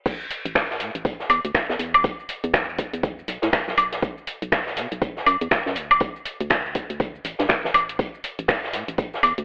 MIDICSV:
0, 0, Header, 1, 3, 480
1, 0, Start_track
1, 0, Tempo, 495868
1, 56, Time_signature, 4, 2, 24, 8
1, 9146, End_track
2, 0, Start_track
2, 0, Title_t, "FM bass"
2, 0, Program_c, 0, 39
2, 440, Note_on_c, 0, 33, 100
2, 776, Note_on_c, 0, 45, 86
2, 791, Note_off_c, 0, 33, 0
2, 874, Note_off_c, 0, 45, 0
2, 920, Note_on_c, 0, 33, 94
2, 1207, Note_off_c, 0, 33, 0
2, 1256, Note_on_c, 0, 40, 83
2, 1354, Note_off_c, 0, 40, 0
2, 1401, Note_on_c, 0, 38, 93
2, 1466, Note_off_c, 0, 38, 0
2, 1641, Note_on_c, 0, 40, 94
2, 1706, Note_off_c, 0, 40, 0
2, 1736, Note_on_c, 0, 40, 88
2, 2046, Note_off_c, 0, 40, 0
2, 2360, Note_on_c, 0, 40, 100
2, 2697, Note_on_c, 0, 28, 86
2, 2711, Note_off_c, 0, 40, 0
2, 2795, Note_off_c, 0, 28, 0
2, 2840, Note_on_c, 0, 40, 92
2, 3127, Note_off_c, 0, 40, 0
2, 3176, Note_on_c, 0, 35, 87
2, 3274, Note_off_c, 0, 35, 0
2, 3322, Note_on_c, 0, 45, 93
2, 3386, Note_off_c, 0, 45, 0
2, 3562, Note_on_c, 0, 35, 93
2, 3626, Note_off_c, 0, 35, 0
2, 3657, Note_on_c, 0, 35, 88
2, 3967, Note_off_c, 0, 35, 0
2, 4280, Note_on_c, 0, 35, 97
2, 4616, Note_on_c, 0, 47, 89
2, 4631, Note_off_c, 0, 35, 0
2, 4714, Note_off_c, 0, 47, 0
2, 4762, Note_on_c, 0, 35, 93
2, 5048, Note_off_c, 0, 35, 0
2, 5097, Note_on_c, 0, 42, 87
2, 5195, Note_off_c, 0, 42, 0
2, 5241, Note_on_c, 0, 40, 96
2, 5306, Note_off_c, 0, 40, 0
2, 5482, Note_on_c, 0, 42, 90
2, 5578, Note_on_c, 0, 38, 87
2, 5593, Note_off_c, 0, 42, 0
2, 5887, Note_off_c, 0, 38, 0
2, 6201, Note_on_c, 0, 38, 101
2, 6536, Note_on_c, 0, 26, 87
2, 6551, Note_off_c, 0, 38, 0
2, 6634, Note_off_c, 0, 26, 0
2, 6680, Note_on_c, 0, 38, 90
2, 6967, Note_off_c, 0, 38, 0
2, 7016, Note_on_c, 0, 33, 87
2, 7114, Note_off_c, 0, 33, 0
2, 7160, Note_on_c, 0, 43, 96
2, 7225, Note_off_c, 0, 43, 0
2, 7400, Note_on_c, 0, 33, 90
2, 7465, Note_off_c, 0, 33, 0
2, 7497, Note_on_c, 0, 33, 89
2, 7807, Note_off_c, 0, 33, 0
2, 8121, Note_on_c, 0, 33, 98
2, 8456, Note_on_c, 0, 45, 88
2, 8470, Note_off_c, 0, 33, 0
2, 8554, Note_off_c, 0, 45, 0
2, 8599, Note_on_c, 0, 33, 90
2, 8886, Note_off_c, 0, 33, 0
2, 8935, Note_on_c, 0, 40, 86
2, 9034, Note_off_c, 0, 40, 0
2, 9081, Note_on_c, 0, 38, 96
2, 9146, Note_off_c, 0, 38, 0
2, 9146, End_track
3, 0, Start_track
3, 0, Title_t, "Drums"
3, 56, Note_on_c, 9, 36, 115
3, 56, Note_on_c, 9, 42, 55
3, 56, Note_on_c, 9, 49, 105
3, 60, Note_on_c, 9, 82, 45
3, 63, Note_off_c, 9, 42, 0
3, 63, Note_on_c, 9, 42, 94
3, 153, Note_off_c, 9, 36, 0
3, 153, Note_off_c, 9, 49, 0
3, 157, Note_off_c, 9, 82, 0
3, 160, Note_off_c, 9, 42, 0
3, 204, Note_on_c, 9, 82, 23
3, 296, Note_on_c, 9, 46, 107
3, 298, Note_on_c, 9, 42, 66
3, 300, Note_off_c, 9, 82, 0
3, 300, Note_on_c, 9, 82, 78
3, 392, Note_off_c, 9, 46, 0
3, 395, Note_off_c, 9, 42, 0
3, 396, Note_off_c, 9, 82, 0
3, 441, Note_on_c, 9, 42, 67
3, 445, Note_on_c, 9, 82, 33
3, 535, Note_on_c, 9, 46, 75
3, 536, Note_on_c, 9, 36, 117
3, 537, Note_off_c, 9, 42, 0
3, 537, Note_on_c, 9, 42, 54
3, 540, Note_on_c, 9, 26, 126
3, 540, Note_on_c, 9, 38, 121
3, 541, Note_off_c, 9, 82, 0
3, 541, Note_on_c, 9, 82, 44
3, 631, Note_off_c, 9, 46, 0
3, 633, Note_off_c, 9, 36, 0
3, 633, Note_off_c, 9, 42, 0
3, 637, Note_off_c, 9, 26, 0
3, 637, Note_off_c, 9, 38, 0
3, 637, Note_off_c, 9, 82, 0
3, 683, Note_on_c, 9, 38, 46
3, 684, Note_on_c, 9, 82, 23
3, 769, Note_on_c, 9, 42, 62
3, 774, Note_off_c, 9, 38, 0
3, 774, Note_on_c, 9, 38, 42
3, 776, Note_on_c, 9, 46, 105
3, 780, Note_off_c, 9, 82, 0
3, 780, Note_on_c, 9, 82, 75
3, 866, Note_off_c, 9, 42, 0
3, 871, Note_off_c, 9, 38, 0
3, 873, Note_off_c, 9, 46, 0
3, 877, Note_off_c, 9, 82, 0
3, 920, Note_on_c, 9, 42, 69
3, 924, Note_on_c, 9, 82, 34
3, 1016, Note_off_c, 9, 42, 0
3, 1016, Note_on_c, 9, 36, 114
3, 1016, Note_on_c, 9, 42, 55
3, 1018, Note_off_c, 9, 42, 0
3, 1018, Note_on_c, 9, 42, 93
3, 1020, Note_off_c, 9, 82, 0
3, 1020, Note_on_c, 9, 82, 46
3, 1113, Note_off_c, 9, 36, 0
3, 1115, Note_off_c, 9, 42, 0
3, 1117, Note_off_c, 9, 82, 0
3, 1159, Note_on_c, 9, 38, 34
3, 1165, Note_on_c, 9, 82, 22
3, 1256, Note_off_c, 9, 38, 0
3, 1256, Note_on_c, 9, 42, 66
3, 1256, Note_on_c, 9, 46, 106
3, 1256, Note_on_c, 9, 76, 67
3, 1260, Note_off_c, 9, 82, 0
3, 1260, Note_on_c, 9, 82, 80
3, 1353, Note_off_c, 9, 42, 0
3, 1353, Note_off_c, 9, 46, 0
3, 1353, Note_off_c, 9, 76, 0
3, 1357, Note_off_c, 9, 82, 0
3, 1400, Note_on_c, 9, 42, 70
3, 1404, Note_on_c, 9, 82, 34
3, 1495, Note_off_c, 9, 42, 0
3, 1495, Note_on_c, 9, 38, 121
3, 1495, Note_on_c, 9, 42, 86
3, 1496, Note_on_c, 9, 36, 114
3, 1497, Note_off_c, 9, 42, 0
3, 1497, Note_on_c, 9, 42, 55
3, 1500, Note_on_c, 9, 26, 123
3, 1501, Note_off_c, 9, 82, 0
3, 1501, Note_on_c, 9, 82, 43
3, 1592, Note_off_c, 9, 38, 0
3, 1593, Note_off_c, 9, 36, 0
3, 1593, Note_off_c, 9, 42, 0
3, 1597, Note_off_c, 9, 26, 0
3, 1597, Note_off_c, 9, 82, 0
3, 1640, Note_on_c, 9, 38, 63
3, 1645, Note_on_c, 9, 82, 23
3, 1737, Note_off_c, 9, 38, 0
3, 1737, Note_on_c, 9, 46, 108
3, 1741, Note_off_c, 9, 82, 0
3, 1741, Note_on_c, 9, 42, 69
3, 1741, Note_on_c, 9, 82, 81
3, 1834, Note_off_c, 9, 46, 0
3, 1838, Note_off_c, 9, 42, 0
3, 1838, Note_off_c, 9, 82, 0
3, 1881, Note_on_c, 9, 42, 71
3, 1881, Note_on_c, 9, 76, 80
3, 1885, Note_on_c, 9, 82, 35
3, 1974, Note_off_c, 9, 42, 0
3, 1974, Note_on_c, 9, 42, 93
3, 1976, Note_off_c, 9, 42, 0
3, 1976, Note_on_c, 9, 36, 121
3, 1976, Note_on_c, 9, 42, 55
3, 1978, Note_off_c, 9, 76, 0
3, 1981, Note_off_c, 9, 82, 0
3, 1981, Note_on_c, 9, 82, 44
3, 2073, Note_off_c, 9, 36, 0
3, 2073, Note_off_c, 9, 42, 0
3, 2077, Note_off_c, 9, 82, 0
3, 2125, Note_on_c, 9, 82, 22
3, 2216, Note_on_c, 9, 46, 110
3, 2220, Note_off_c, 9, 82, 0
3, 2220, Note_on_c, 9, 82, 77
3, 2221, Note_on_c, 9, 42, 66
3, 2313, Note_off_c, 9, 46, 0
3, 2317, Note_off_c, 9, 42, 0
3, 2317, Note_off_c, 9, 82, 0
3, 2360, Note_on_c, 9, 42, 65
3, 2364, Note_on_c, 9, 82, 33
3, 2453, Note_off_c, 9, 42, 0
3, 2453, Note_on_c, 9, 42, 81
3, 2454, Note_on_c, 9, 38, 112
3, 2456, Note_off_c, 9, 42, 0
3, 2456, Note_on_c, 9, 36, 118
3, 2456, Note_on_c, 9, 42, 55
3, 2459, Note_on_c, 9, 26, 123
3, 2460, Note_off_c, 9, 82, 0
3, 2460, Note_on_c, 9, 82, 42
3, 2550, Note_off_c, 9, 38, 0
3, 2553, Note_off_c, 9, 36, 0
3, 2553, Note_off_c, 9, 42, 0
3, 2556, Note_off_c, 9, 26, 0
3, 2557, Note_off_c, 9, 82, 0
3, 2604, Note_on_c, 9, 82, 21
3, 2696, Note_on_c, 9, 36, 65
3, 2696, Note_on_c, 9, 46, 107
3, 2700, Note_off_c, 9, 82, 0
3, 2700, Note_on_c, 9, 42, 70
3, 2700, Note_on_c, 9, 82, 74
3, 2793, Note_off_c, 9, 36, 0
3, 2793, Note_off_c, 9, 46, 0
3, 2797, Note_off_c, 9, 42, 0
3, 2797, Note_off_c, 9, 82, 0
3, 2842, Note_on_c, 9, 42, 68
3, 2846, Note_on_c, 9, 82, 33
3, 2934, Note_off_c, 9, 42, 0
3, 2934, Note_on_c, 9, 42, 85
3, 2936, Note_on_c, 9, 36, 120
3, 2937, Note_off_c, 9, 42, 0
3, 2937, Note_on_c, 9, 42, 56
3, 2941, Note_off_c, 9, 82, 0
3, 2941, Note_on_c, 9, 82, 44
3, 3033, Note_off_c, 9, 36, 0
3, 3034, Note_off_c, 9, 42, 0
3, 3038, Note_off_c, 9, 82, 0
3, 3085, Note_on_c, 9, 82, 21
3, 3176, Note_on_c, 9, 46, 112
3, 3180, Note_off_c, 9, 82, 0
3, 3180, Note_on_c, 9, 82, 78
3, 3182, Note_on_c, 9, 42, 72
3, 3273, Note_off_c, 9, 46, 0
3, 3277, Note_off_c, 9, 82, 0
3, 3279, Note_off_c, 9, 42, 0
3, 3311, Note_on_c, 9, 38, 57
3, 3320, Note_on_c, 9, 42, 66
3, 3324, Note_on_c, 9, 82, 32
3, 3408, Note_off_c, 9, 38, 0
3, 3415, Note_off_c, 9, 42, 0
3, 3415, Note_on_c, 9, 38, 110
3, 3415, Note_on_c, 9, 42, 94
3, 3416, Note_off_c, 9, 42, 0
3, 3416, Note_on_c, 9, 36, 122
3, 3416, Note_on_c, 9, 42, 54
3, 3419, Note_on_c, 9, 26, 123
3, 3420, Note_off_c, 9, 82, 0
3, 3420, Note_on_c, 9, 82, 44
3, 3512, Note_off_c, 9, 38, 0
3, 3513, Note_off_c, 9, 36, 0
3, 3513, Note_off_c, 9, 42, 0
3, 3516, Note_off_c, 9, 26, 0
3, 3517, Note_off_c, 9, 82, 0
3, 3562, Note_on_c, 9, 38, 51
3, 3564, Note_on_c, 9, 82, 22
3, 3650, Note_on_c, 9, 42, 71
3, 3656, Note_on_c, 9, 46, 113
3, 3656, Note_on_c, 9, 76, 66
3, 3659, Note_off_c, 9, 38, 0
3, 3660, Note_off_c, 9, 82, 0
3, 3660, Note_on_c, 9, 82, 76
3, 3747, Note_off_c, 9, 42, 0
3, 3753, Note_off_c, 9, 46, 0
3, 3753, Note_off_c, 9, 76, 0
3, 3757, Note_off_c, 9, 82, 0
3, 3797, Note_on_c, 9, 38, 44
3, 3801, Note_on_c, 9, 42, 70
3, 3805, Note_on_c, 9, 82, 35
3, 3894, Note_off_c, 9, 38, 0
3, 3896, Note_off_c, 9, 42, 0
3, 3896, Note_on_c, 9, 36, 123
3, 3896, Note_on_c, 9, 42, 51
3, 3897, Note_off_c, 9, 42, 0
3, 3897, Note_on_c, 9, 42, 84
3, 3900, Note_off_c, 9, 82, 0
3, 3900, Note_on_c, 9, 82, 44
3, 3993, Note_off_c, 9, 36, 0
3, 3993, Note_off_c, 9, 42, 0
3, 3997, Note_off_c, 9, 82, 0
3, 4044, Note_on_c, 9, 82, 22
3, 4136, Note_on_c, 9, 46, 113
3, 4137, Note_on_c, 9, 42, 69
3, 4140, Note_off_c, 9, 82, 0
3, 4140, Note_on_c, 9, 82, 76
3, 4233, Note_off_c, 9, 42, 0
3, 4233, Note_off_c, 9, 46, 0
3, 4237, Note_off_c, 9, 82, 0
3, 4281, Note_on_c, 9, 42, 64
3, 4285, Note_on_c, 9, 82, 32
3, 4376, Note_on_c, 9, 36, 127
3, 4377, Note_off_c, 9, 42, 0
3, 4377, Note_on_c, 9, 42, 51
3, 4378, Note_on_c, 9, 38, 104
3, 4378, Note_on_c, 9, 46, 83
3, 4380, Note_on_c, 9, 26, 126
3, 4381, Note_off_c, 9, 82, 0
3, 4381, Note_on_c, 9, 82, 44
3, 4473, Note_off_c, 9, 36, 0
3, 4474, Note_off_c, 9, 38, 0
3, 4474, Note_off_c, 9, 42, 0
3, 4475, Note_off_c, 9, 46, 0
3, 4477, Note_off_c, 9, 26, 0
3, 4478, Note_off_c, 9, 82, 0
3, 4516, Note_on_c, 9, 38, 43
3, 4525, Note_on_c, 9, 82, 22
3, 4613, Note_off_c, 9, 38, 0
3, 4616, Note_on_c, 9, 46, 109
3, 4617, Note_on_c, 9, 38, 44
3, 4618, Note_on_c, 9, 42, 62
3, 4621, Note_off_c, 9, 82, 0
3, 4621, Note_on_c, 9, 82, 73
3, 4713, Note_off_c, 9, 46, 0
3, 4714, Note_off_c, 9, 38, 0
3, 4714, Note_off_c, 9, 42, 0
3, 4717, Note_off_c, 9, 82, 0
3, 4761, Note_on_c, 9, 42, 65
3, 4765, Note_on_c, 9, 82, 32
3, 4855, Note_off_c, 9, 42, 0
3, 4855, Note_on_c, 9, 42, 82
3, 4856, Note_off_c, 9, 42, 0
3, 4856, Note_on_c, 9, 36, 126
3, 4856, Note_on_c, 9, 42, 52
3, 4860, Note_off_c, 9, 82, 0
3, 4860, Note_on_c, 9, 82, 44
3, 4953, Note_off_c, 9, 36, 0
3, 4953, Note_off_c, 9, 42, 0
3, 4957, Note_off_c, 9, 82, 0
3, 5001, Note_on_c, 9, 38, 36
3, 5005, Note_on_c, 9, 82, 22
3, 5094, Note_on_c, 9, 42, 66
3, 5096, Note_on_c, 9, 46, 114
3, 5096, Note_on_c, 9, 76, 70
3, 5097, Note_off_c, 9, 38, 0
3, 5100, Note_off_c, 9, 82, 0
3, 5100, Note_on_c, 9, 82, 76
3, 5191, Note_off_c, 9, 42, 0
3, 5193, Note_off_c, 9, 46, 0
3, 5193, Note_off_c, 9, 76, 0
3, 5197, Note_off_c, 9, 82, 0
3, 5240, Note_on_c, 9, 42, 64
3, 5244, Note_on_c, 9, 82, 31
3, 5336, Note_off_c, 9, 42, 0
3, 5336, Note_on_c, 9, 36, 124
3, 5336, Note_on_c, 9, 38, 118
3, 5336, Note_on_c, 9, 42, 51
3, 5338, Note_off_c, 9, 42, 0
3, 5338, Note_on_c, 9, 42, 81
3, 5339, Note_on_c, 9, 26, 124
3, 5340, Note_off_c, 9, 82, 0
3, 5340, Note_on_c, 9, 82, 44
3, 5432, Note_off_c, 9, 38, 0
3, 5433, Note_off_c, 9, 36, 0
3, 5435, Note_off_c, 9, 42, 0
3, 5436, Note_off_c, 9, 26, 0
3, 5437, Note_off_c, 9, 82, 0
3, 5481, Note_on_c, 9, 38, 54
3, 5485, Note_on_c, 9, 82, 21
3, 5567, Note_on_c, 9, 42, 66
3, 5575, Note_on_c, 9, 46, 112
3, 5577, Note_off_c, 9, 38, 0
3, 5580, Note_off_c, 9, 82, 0
3, 5580, Note_on_c, 9, 82, 76
3, 5663, Note_off_c, 9, 42, 0
3, 5672, Note_off_c, 9, 46, 0
3, 5676, Note_off_c, 9, 82, 0
3, 5720, Note_on_c, 9, 42, 68
3, 5720, Note_on_c, 9, 76, 83
3, 5724, Note_on_c, 9, 82, 34
3, 5809, Note_off_c, 9, 42, 0
3, 5809, Note_on_c, 9, 42, 88
3, 5816, Note_off_c, 9, 42, 0
3, 5816, Note_on_c, 9, 36, 120
3, 5816, Note_on_c, 9, 42, 51
3, 5817, Note_off_c, 9, 76, 0
3, 5820, Note_off_c, 9, 82, 0
3, 5820, Note_on_c, 9, 82, 44
3, 5913, Note_off_c, 9, 36, 0
3, 5913, Note_off_c, 9, 42, 0
3, 5917, Note_off_c, 9, 82, 0
3, 5964, Note_on_c, 9, 82, 22
3, 6052, Note_on_c, 9, 42, 70
3, 6055, Note_on_c, 9, 46, 112
3, 6059, Note_off_c, 9, 82, 0
3, 6059, Note_on_c, 9, 82, 76
3, 6149, Note_off_c, 9, 42, 0
3, 6152, Note_off_c, 9, 46, 0
3, 6156, Note_off_c, 9, 82, 0
3, 6200, Note_on_c, 9, 42, 62
3, 6204, Note_on_c, 9, 82, 33
3, 6289, Note_off_c, 9, 42, 0
3, 6289, Note_on_c, 9, 42, 80
3, 6296, Note_off_c, 9, 42, 0
3, 6296, Note_on_c, 9, 36, 122
3, 6296, Note_on_c, 9, 38, 117
3, 6296, Note_on_c, 9, 42, 51
3, 6299, Note_on_c, 9, 26, 118
3, 6300, Note_off_c, 9, 82, 0
3, 6300, Note_on_c, 9, 82, 43
3, 6392, Note_off_c, 9, 38, 0
3, 6392, Note_off_c, 9, 42, 0
3, 6393, Note_off_c, 9, 36, 0
3, 6396, Note_off_c, 9, 26, 0
3, 6396, Note_off_c, 9, 82, 0
3, 6443, Note_on_c, 9, 82, 21
3, 6535, Note_on_c, 9, 46, 109
3, 6536, Note_on_c, 9, 36, 66
3, 6539, Note_off_c, 9, 82, 0
3, 6539, Note_on_c, 9, 42, 73
3, 6539, Note_on_c, 9, 82, 75
3, 6631, Note_off_c, 9, 46, 0
3, 6633, Note_off_c, 9, 36, 0
3, 6635, Note_off_c, 9, 42, 0
3, 6635, Note_off_c, 9, 82, 0
3, 6679, Note_on_c, 9, 42, 65
3, 6683, Note_on_c, 9, 82, 33
3, 6775, Note_off_c, 9, 42, 0
3, 6775, Note_on_c, 9, 42, 51
3, 6776, Note_on_c, 9, 36, 122
3, 6779, Note_off_c, 9, 42, 0
3, 6779, Note_off_c, 9, 82, 0
3, 6779, Note_on_c, 9, 42, 97
3, 6779, Note_on_c, 9, 82, 43
3, 6873, Note_off_c, 9, 36, 0
3, 6876, Note_off_c, 9, 42, 0
3, 6876, Note_off_c, 9, 82, 0
3, 6924, Note_on_c, 9, 82, 22
3, 7015, Note_on_c, 9, 46, 112
3, 7019, Note_off_c, 9, 82, 0
3, 7019, Note_on_c, 9, 82, 76
3, 7024, Note_on_c, 9, 42, 69
3, 7112, Note_off_c, 9, 46, 0
3, 7116, Note_off_c, 9, 82, 0
3, 7120, Note_off_c, 9, 42, 0
3, 7151, Note_on_c, 9, 38, 60
3, 7160, Note_on_c, 9, 42, 62
3, 7164, Note_on_c, 9, 82, 32
3, 7248, Note_off_c, 9, 38, 0
3, 7248, Note_on_c, 9, 38, 118
3, 7256, Note_off_c, 9, 42, 0
3, 7256, Note_on_c, 9, 36, 121
3, 7256, Note_on_c, 9, 42, 49
3, 7259, Note_on_c, 9, 26, 113
3, 7260, Note_off_c, 9, 82, 0
3, 7260, Note_on_c, 9, 82, 42
3, 7262, Note_off_c, 9, 42, 0
3, 7262, Note_on_c, 9, 42, 86
3, 7345, Note_off_c, 9, 38, 0
3, 7353, Note_off_c, 9, 36, 0
3, 7356, Note_off_c, 9, 26, 0
3, 7357, Note_off_c, 9, 82, 0
3, 7359, Note_off_c, 9, 42, 0
3, 7404, Note_on_c, 9, 38, 58
3, 7404, Note_on_c, 9, 82, 22
3, 7496, Note_on_c, 9, 42, 74
3, 7496, Note_on_c, 9, 46, 109
3, 7496, Note_on_c, 9, 76, 71
3, 7500, Note_off_c, 9, 38, 0
3, 7500, Note_off_c, 9, 82, 0
3, 7500, Note_on_c, 9, 82, 77
3, 7593, Note_off_c, 9, 42, 0
3, 7593, Note_off_c, 9, 46, 0
3, 7593, Note_off_c, 9, 76, 0
3, 7597, Note_off_c, 9, 82, 0
3, 7641, Note_on_c, 9, 42, 66
3, 7645, Note_on_c, 9, 82, 35
3, 7735, Note_off_c, 9, 42, 0
3, 7735, Note_on_c, 9, 42, 92
3, 7736, Note_off_c, 9, 42, 0
3, 7736, Note_on_c, 9, 36, 114
3, 7736, Note_on_c, 9, 42, 52
3, 7740, Note_off_c, 9, 82, 0
3, 7740, Note_on_c, 9, 82, 46
3, 7832, Note_off_c, 9, 36, 0
3, 7833, Note_off_c, 9, 42, 0
3, 7837, Note_off_c, 9, 82, 0
3, 7885, Note_on_c, 9, 82, 23
3, 7976, Note_on_c, 9, 46, 111
3, 7977, Note_on_c, 9, 42, 64
3, 7980, Note_off_c, 9, 82, 0
3, 7980, Note_on_c, 9, 82, 79
3, 8073, Note_off_c, 9, 42, 0
3, 8073, Note_off_c, 9, 46, 0
3, 8077, Note_off_c, 9, 82, 0
3, 8120, Note_on_c, 9, 42, 61
3, 8124, Note_on_c, 9, 82, 33
3, 8211, Note_on_c, 9, 38, 121
3, 8213, Note_on_c, 9, 46, 82
3, 8215, Note_off_c, 9, 42, 0
3, 8215, Note_on_c, 9, 42, 51
3, 8216, Note_on_c, 9, 36, 121
3, 8218, Note_on_c, 9, 26, 114
3, 8219, Note_off_c, 9, 82, 0
3, 8219, Note_on_c, 9, 82, 45
3, 8307, Note_off_c, 9, 38, 0
3, 8310, Note_off_c, 9, 46, 0
3, 8311, Note_off_c, 9, 42, 0
3, 8312, Note_off_c, 9, 36, 0
3, 8315, Note_off_c, 9, 26, 0
3, 8316, Note_off_c, 9, 82, 0
3, 8363, Note_on_c, 9, 82, 22
3, 8365, Note_on_c, 9, 38, 43
3, 8451, Note_off_c, 9, 38, 0
3, 8451, Note_on_c, 9, 38, 43
3, 8451, Note_on_c, 9, 42, 61
3, 8455, Note_on_c, 9, 46, 106
3, 8459, Note_off_c, 9, 82, 0
3, 8459, Note_on_c, 9, 82, 78
3, 8548, Note_off_c, 9, 38, 0
3, 8548, Note_off_c, 9, 42, 0
3, 8552, Note_off_c, 9, 46, 0
3, 8556, Note_off_c, 9, 82, 0
3, 8599, Note_on_c, 9, 42, 61
3, 8603, Note_on_c, 9, 82, 34
3, 8691, Note_off_c, 9, 42, 0
3, 8691, Note_on_c, 9, 42, 93
3, 8695, Note_off_c, 9, 42, 0
3, 8695, Note_on_c, 9, 36, 119
3, 8695, Note_on_c, 9, 42, 51
3, 8699, Note_off_c, 9, 82, 0
3, 8699, Note_on_c, 9, 82, 45
3, 8792, Note_off_c, 9, 36, 0
3, 8792, Note_off_c, 9, 42, 0
3, 8796, Note_off_c, 9, 82, 0
3, 8844, Note_on_c, 9, 82, 23
3, 8846, Note_on_c, 9, 38, 39
3, 8935, Note_on_c, 9, 46, 110
3, 8935, Note_on_c, 9, 76, 69
3, 8939, Note_off_c, 9, 82, 0
3, 8939, Note_on_c, 9, 82, 82
3, 8943, Note_off_c, 9, 38, 0
3, 8943, Note_on_c, 9, 42, 69
3, 9032, Note_off_c, 9, 46, 0
3, 9032, Note_off_c, 9, 76, 0
3, 9036, Note_off_c, 9, 82, 0
3, 9039, Note_off_c, 9, 42, 0
3, 9080, Note_on_c, 9, 42, 63
3, 9084, Note_on_c, 9, 82, 33
3, 9146, Note_off_c, 9, 42, 0
3, 9146, Note_off_c, 9, 82, 0
3, 9146, End_track
0, 0, End_of_file